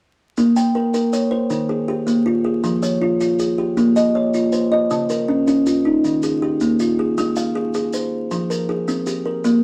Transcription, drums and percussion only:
0.37 maracas
0.56 maracas
0.94 maracas
1.13 maracas
1.50 maracas
2.07 maracas
2.64 maracas
2.83 maracas
3.21 maracas
3.39 maracas
3.77 maracas
3.96 maracas
4.34 maracas
4.52 maracas
4.91 maracas
5.10 maracas
5.47 maracas
5.66 maracas
6.05 maracas
6.23 maracas
6.61 maracas
6.79 maracas
7.18 maracas
7.36 maracas
7.74 maracas
7.93 maracas
8.31 maracas
8.51 maracas
8.88 maracas
9.07 maracas
9.45 maracas

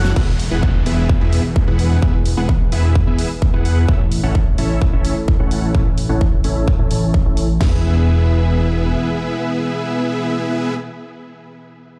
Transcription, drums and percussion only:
0.05 snare, closed hi-hat, cabasa
0.16 kick, crash
0.40 open hi-hat
0.63 kick
0.86 open hi-hat
1.09 kick
1.33 open hi-hat
1.56 kick
1.79 open hi-hat
2.02 kick
2.26 open hi-hat
2.49 kick
2.72 open hi-hat
2.95 kick
3.19 open hi-hat
3.42 kick
3.65 open hi-hat
3.88 kick
4.12 open hi-hat
4.35 kick
4.58 open hi-hat
4.82 kick
5.05 open hi-hat
5.28 kick
5.51 open hi-hat
5.75 kick
5.98 open hi-hat
6.21 kick
6.44 open hi-hat
6.68 kick
6.91 open hi-hat
7.14 kick
7.37 open hi-hat
7.61 kick, snare, crash

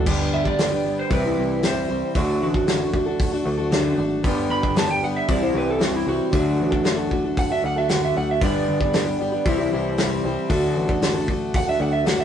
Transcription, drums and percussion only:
0.06 kick, crash
0.45 kick
0.59 snare, open hi-hat
1.11 kick, open hi-hat
1.63 snare, open hi-hat
2.15 kick, open hi-hat
2.54 kick
2.68 snare, open hi-hat
2.94 kick
3.19 kick, open hi-hat
3.72 snare, open hi-hat
4.24 kick, open hi-hat
4.63 kick
4.76 snare, open hi-hat
5.29 kick, open hi-hat
5.81 snare, open hi-hat
6.33 kick, open hi-hat
6.72 kick
6.85 snare, open hi-hat
7.11 kick
7.37 kick, open hi-hat
7.89 snare, open hi-hat
8.41 kick, open hi-hat
8.81 kick
8.94 snare, open hi-hat
9.46 kick, open hi-hat
9.98 snare, open hi-hat
10.50 kick, open hi-hat
10.89 kick
11.02 snare, open hi-hat
11.28 kick
11.54 kick, open hi-hat
12.06 snare, open hi-hat

